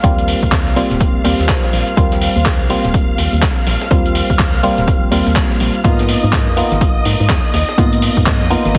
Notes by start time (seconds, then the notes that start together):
Already playing: F5 F6
0.03 D#2 G3 A#3 C4 F4, kick, closed hi-hat
0.18 closed hi-hat
0.28 closed hi-hat, open hi-hat
0.43 D#2, kick
0.52 kick, snare, clap, closed hi-hat
0.67 C2, snare
0.76 G3 A#3 C4 F4, closed hi-hat, open hi-hat
0.91 D#1, snare, closed hi-hat
1.00 kick, closed hi-hat
1.24 D#2 G3 A#3 C4 F4, closed hi-hat, open hi-hat
1.39 D#2, snare
1.49 C2, kick, snare, clap, closed hi-hat
1.64 snare
1.73 A#1, closed hi-hat, open hi-hat
1.88 closed hi-hat
1.97 D#2 G3 A#3 C4 F4, kick, closed hi-hat
2.12 snare, closed hi-hat
2.22 closed hi-hat, open hi-hat
2.36 D#2
2.46 kick, snare, clap, closed hi-hat
2.60 C2
2.69 G3 A#3 C4 F4, closed hi-hat, open hi-hat
2.85 D#1, snare, closed hi-hat
2.94 kick, closed hi-hat
3.18 D#2, closed hi-hat, open hi-hat
3.33 D#2, closed hi-hat
3.42 C2, kick, snare, clap, closed hi-hat
3.67 A#1, snare, closed hi-hat, open hi-hat
3.81 snare, closed hi-hat
3.90 D#2 G3 A#3 C4 F4, kick, closed hi-hat
4.06 closed hi-hat
4.15 closed hi-hat, open hi-hat
4.30 D#2, kick
4.39 kick, snare, clap, closed hi-hat
4.54 C2, snare
4.63 G3 A#3 C4 F4, closed hi-hat, open hi-hat
4.78 D#1, snare, closed hi-hat
4.88 kick, closed hi-hat
5.11 D#2 G3 A#3 C4 F4, closed hi-hat, open hi-hat
5.27 D#2, snare
5.36 C2, kick, snare, clap, closed hi-hat
5.51 snare
5.60 A#1, closed hi-hat, open hi-hat
5.75 closed hi-hat
5.84 G#2 A#3 B3 D#4 F4 D#5 D#6, kick, closed hi-hat
5.99 snare, closed hi-hat
6.09 closed hi-hat, open hi-hat
6.23 G#2
6.33 kick, snare, clap, closed hi-hat
6.48 F2
6.56 A#3 B3 D#4 F4, closed hi-hat, open hi-hat
6.72 G#1, snare, closed hi-hat
6.81 kick, closed hi-hat
7.05 G#2, closed hi-hat, open hi-hat
7.20 G#2, closed hi-hat
7.29 F2, kick, snare, clap, closed hi-hat
7.54 D#2, snare, closed hi-hat, open hi-hat
7.68 snare, closed hi-hat
7.78 G#2 A#3 B3 D#4 F4, kick, closed hi-hat
7.93 closed hi-hat
8.02 closed hi-hat, open hi-hat
8.17 G#2, kick
8.26 kick, snare, clap, closed hi-hat
8.41 F2, snare
8.50 A#3 B3 D#4 F4, closed hi-hat, open hi-hat
8.65 G#1, snare, closed hi-hat
8.75 kick, closed hi-hat